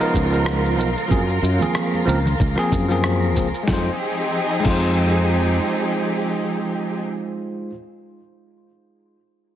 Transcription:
Already playing: C#3 F3 G#3 B3 D#4 F4 A#4
0.00 B3 D#4 A#4, shaker
0.14 C#2, kick, shaker
0.30 F3 B3 D#4 A#4, shaker
0.46 cross-stick, shaker
0.66 shaker
0.76 B1 F3 B3 D#4 A#4, shaker
0.97 shaker
1.08 F#2 F3 A#3 C4 G#4, kick, shaker
1.29 shaker
1.42 F#2, shaker
1.59 F3 A#3 C4 G#4, high conga, low conga, shaker
1.75 cross-stick, shaker
1.94 high conga, shaker
2.05 C#2 F3 A#3 C4 A#4, shaker
2.25 low conga, shaker
2.40 C#2, kick, shaker
2.55 F3 A#3 C4 G#4, cross-stick, shaker
2.72 F#2, kick, shaker
2.88 F3 A#3 C4 G#4, shaker
3.04 cross-stick, shaker
3.23 shaker
3.34 C#2 F3 A#3 C4 G#4, kick, shaker
3.54 shaker
3.63 G#3 D#4
3.68 F2 F3 C4 D#4 F4 G4 G#4, kick, snare
3.74 C5
4.60 G#3 D#4
4.65 F2 F4, kick, crash
4.70 C5

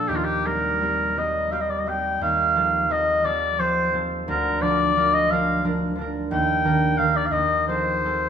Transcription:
Already playing: A#2 F3 A#3 D4
0.08 D#2 G4
0.16 F4
0.24 G4
0.45 G3 C4 G4 A#4
0.81 G3 C4 G4
1.17 G3 C4 G4 D#5
1.52 G3 C4 G4 F5
1.61 D#5
1.70 D5
1.79 D#5
1.86 G3 C4 G4 G5
2.21 D#2 F5
2.55 F3 C4 A4
2.89 F3 C4 A4 D#5
3.24 F3 C4 A4 D5
3.59 F3 C4 A4 C5
3.93 F3 C4 A4
4.28 D2 A#4
4.62 F3 D4 A#4 D5
4.96 F3 D4 A#4
5.14 D#5
5.31 F3 D4 A#4 F5
5.64 F3 D4 A#4
5.95 F3 D4
6.01 A#4
6.31 D#2 G5
6.64 D#3 D4 A#4
6.98 D#3 D4 A#4 F5
7.16 D5
7.26 F5
7.32 D#2 D#5
7.68 F3 C4 A4 C5
8.05 F3 C4 A4

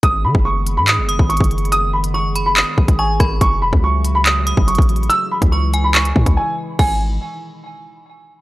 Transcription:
0.03 G#1 D#3 G#3 B3 G#4 D#6, kick, closed hi-hat
0.24 D#3 B5
0.35 F#1, kick
0.45 C#6
0.67 closed hi-hat
0.77 G#2 B5
0.87 D#6, clap, closed hi-hat
0.98 F#1
1.09 D#6, closed hi-hat
1.19 G#1, kick
1.29 C#6, closed hi-hat
1.37 F#1, kick, closed hi-hat
1.44 closed hi-hat
1.51 closed hi-hat
1.58 closed hi-hat
1.65 closed hi-hat
1.72 D#6, closed hi-hat
1.93 B5
2.04 closed hi-hat
2.14 C#6
2.35 B5, closed hi-hat
2.46 B5
2.56 D#6, clap, closed hi-hat
2.78 G#1, kick
2.88 G#1, kick, closed hi-hat
2.99 G#5 C#6
3.20 G#1 B5, kick, cross-stick, closed hi-hat
3.41 F#1 C#3 F#3 A3 F#4 C#6, kick, closed hi-hat
3.62 E1 B5
3.73 C#2, kick
3.84 C#6
4.05 closed hi-hat
4.15 B5
4.25 D#6, clap, closed hi-hat
4.47 D#6, closed hi-hat
4.57 F#1, kick
4.68 C#6, closed hi-hat
4.75 A1, kick, closed hi-hat
4.82 closed hi-hat
4.89 closed hi-hat
4.96 closed hi-hat
5.03 closed hi-hat
5.10 E3 G#3 E4 E6, closed hi-hat
5.31 B5
5.42 C#2, kick, closed hi-hat
5.52 C#6
5.74 G#5, closed hi-hat
5.84 B5
5.95 C#6, clap, closed hi-hat
6.05 closed hi-hat
6.16 G#2, kick
6.26 C#2, kick, closed hi-hat
6.37 G#5
6.79 G#1 B2 D#3 G#3 D#4 G#5, kick, crash

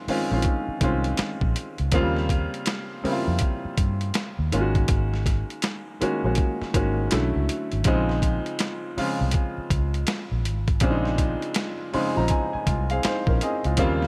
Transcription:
Already playing: D#3 G#3 C4 C#4 E4 F4
0.08 D#3 G#3 C4 C#4 F4, muted fingered electric bass stroke, open hi-hat
0.31 A#1 D#3 G#3 C4 C#4 F4
0.42 kick, closed hi-hat
0.68 muted fingered electric bass stroke
0.81 C2 D#3 G#3 C4 C#4 F4, kick, closed hi-hat
1.04 closed hi-hat
1.17 muted fingered electric bass stroke, snare, closed hi-hat
1.41 A#1, kick
1.56 closed hi-hat
1.78 C#2, closed hi-hat
1.92 D#2 C#3 F3 A#3 C4 F4, kick, closed hi-hat
2.00 G3
2.17 snare
2.29 kick, closed hi-hat
2.54 closed hi-hat
2.66 snare, closed hi-hat
3.04 C#3 G3 A#3 C4 E4, muted fingered electric bass stroke, open hi-hat
3.12 F4
3.28 F2
3.39 kick, closed hi-hat
3.65 muted fingered electric bass stroke
3.77 G2, kick, closed hi-hat
4.01 closed hi-hat
4.14 snare, closed hi-hat
4.39 D#2
4.52 G#1 D#3 G#3 A#3 C#4 F4, closed hi-hat
4.61 F#4
4.75 kick, closed hi-hat
4.88 G#1, kick, closed hi-hat
5.14 snare
5.26 kick, snare, closed hi-hat
5.50 closed hi-hat
5.62 snare, closed hi-hat
6.01 D#3 G#3 A#3 C#4 F#4, muted fingered electric bass stroke, closed hi-hat
6.24 A#1 D#3 G#3 A#3 C#4 F#4
6.35 kick, closed hi-hat
6.62 muted fingered electric bass stroke, snare
6.74 G#1 D#3 G#3 A#3 C#4 F#4, kick, closed hi-hat
7.11 B1 D3 F#3 A3 C#4 E4, snare, closed hi-hat
7.36 C#2
7.49 closed hi-hat
7.72 G#1, closed hi-hat
7.84 A#1 C#3 F3 G#3 C4 D#4, kick, closed hi-hat
8.09 snare
8.22 kick, closed hi-hat
8.46 closed hi-hat
8.59 snare, closed hi-hat
8.97 C#3 F3 G#3 C4 F4, muted fingered electric bass stroke, open hi-hat
9.21 C2
9.31 kick, closed hi-hat
9.58 muted fingered electric bass stroke
9.70 C#2, kick, closed hi-hat
9.94 closed hi-hat
10.07 snare, closed hi-hat
10.32 A#1
10.45 G#1, closed hi-hat
10.68 kick, closed hi-hat
10.80 A#1 C#3 F3 G#3 C4 D4, kick, closed hi-hat
10.91 D#4
11.05 snare
11.18 kick, closed hi-hat
11.42 closed hi-hat
11.54 snare, closed hi-hat
11.93 C#3 F3 G#3 C4 D#4 C6, muted fingered electric bass stroke, open hi-hat
12.16 A#1 C#3 F3 G#3 C4 D#4 A#5
12.28 G#5, kick, closed hi-hat
12.53 G#5, muted fingered electric bass stroke
12.67 C2 G#3 F4, kick, closed hi-hat
12.90 C4 G#4 F5, closed hi-hat
13.03 D#4 C5 F5, muted fingered electric bass stroke, snare, closed hi-hat
13.27 A#1 C#4 A#4, kick
13.41 C4 G#4 D#5, closed hi-hat
13.64 C#2 G#3 F4, closed hi-hat
13.77 D#2 C#3 G3 A#3 C4 F4, kick, closed hi-hat
14.02 snare

